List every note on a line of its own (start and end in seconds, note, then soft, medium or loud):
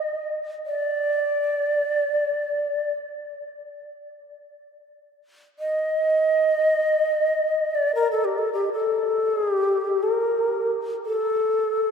0.00 0.33 D#5 medium
0.66 2.92 D5 medium
5.59 7.76 D#5 medium
7.75 7.94 D5 medium
7.95 8.11 A#4 medium
8.12 8.26 A4 soft
8.25 8.40 G4 soft
8.38 8.53 A4 soft
8.53 8.70 G4 soft
8.72 9.37 A4 soft
9.37 9.52 G#4 soft
9.52 10.05 G4 soft
10.03 10.71 A#4 soft
11.06 11.91 A4 medium